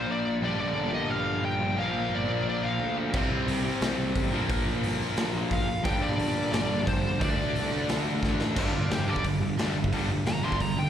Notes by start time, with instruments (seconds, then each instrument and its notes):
Already playing: distorted electric guitar A#2 F3 A#3, lead electric guitar C5
0.08 picked electric bass A#1
0.12 lead electric guitar D5
0.41 picked electric bass A#1, distorted electric guitar G2 D3 G3, lead electric guitar D5
0.58 picked electric bass A#1, lead electric guitar D5
0.75 picked electric bass A#1
0.92 picked electric bass A#2, lead electric guitar D#5
1.10 picked electric bass A#1, lead electric guitar F5
1.26 picked electric bass A#1
1.42 picked electric bass A#1, lead electric guitar G5
1.61 picked electric bass A#1
1.76 picked electric bass A#1, distorted electric guitar A#2 F3, lead electric guitar F5
1.80 distorted electric guitar A#3
1.94 picked electric bass A#1
2.10 picked electric bass G1
2.15 lead electric guitar D5
2.28 picked electric bass A#1
2.44 picked electric bass A#1
2.49 lead electric guitar D5
2.61 picked electric bass A#1, lead electric guitar F5
2.79 picked electric bass D2
3.12 picked electric bass C2, distorted electric guitar C3 G3 C4, kick, crash
3.31 picked electric bass C2
3.46 picked electric bass C2, open hi-hat
3.64 picked electric bass C3
3.81 picked electric bass C2, snare, open hi-hat
3.99 picked electric bass C2
4.16 picked electric bass A1, kick, open hi-hat
4.31 picked electric bass A#1, distorted electric guitar A#2 F3 A#3
4.50 picked electric bass A#1, kick, open hi-hat
4.66 picked electric bass A#1
4.83 picked electric bass G1, open hi-hat
5.00 picked electric bass A#1
5.16 picked electric bass A#1, snare, open hi-hat
5.33 picked electric bass A#1
5.51 picked electric bass A#1, lead electric guitar F5, kick, open hi-hat
5.83 picked electric bass A#1, distorted electric guitar G2 D3 G3, lead electric guitar G5, kick, open hi-hat
6.02 picked electric bass A#1, lead electric guitar D5
6.18 picked electric bass A#1, open hi-hat
6.35 picked electric bass A#2
6.52 picked electric bass A#1, lead electric guitar D5, snare, open hi-hat
6.69 picked electric bass A#1
6.87 picked electric bass A#1, lead electric guitar C5, kick, open hi-hat
7.03 picked electric bass A#1
7.20 picked electric bass D2, distorted electric guitar D3 A3 D4, lead electric guitar D5, kick, open hi-hat
7.37 picked electric bass D2
7.55 picked electric bass C2, open hi-hat
7.71 picked electric bass D2
7.88 picked electric bass D2, snare, open hi-hat
8.05 picked electric bass D2
8.23 picked electric bass A1, kick, snare
8.41 snare
8.55 picked electric bass G1, distorted electric guitar G2 D3 G3, lead electric guitar D5, kick, crash
8.60 lead electric guitar F5
8.72 picked electric bass G1, distorted electric guitar G2 D3
8.76 lead electric guitar F4 D5
8.89 picked electric bass F1, distorted electric guitar G2 D3, lead electric guitar G4 C5, snare, open hi-hat
9.06 picked electric bass G1, distorted electric guitar G2 D3 G3, lead electric guitar D5
9.16 kick
9.24 picked electric bass G1, distorted electric guitar G2 D3, kick, open hi-hat
9.40 picked electric bass G1, distorted electric guitar G2 D3
9.58 picked electric bass D2, distorted electric guitar G2 D3 G3, snare, open hi-hat
9.75 picked electric bass G1, distorted electric guitar G2 D3
9.84 kick
9.92 picked electric bass G1, distorted electric guitar G2 D3 G3, kick, open hi-hat
10.08 picked electric bass G1, distorted electric guitar G2 D3
10.25 picked electric bass F1, distorted electric guitar G2 D3, lead electric guitar A#5, snare, open hi-hat
10.43 picked electric bass G1, distorted electric guitar G2 D3 G3, lead electric guitar C6
10.52 kick
10.59 picked electric bass G1, distorted electric guitar G2 D3, lead electric guitar A#5, kick, open hi-hat
10.77 picked electric bass G1, distorted electric guitar G2 D3, lead electric guitar G5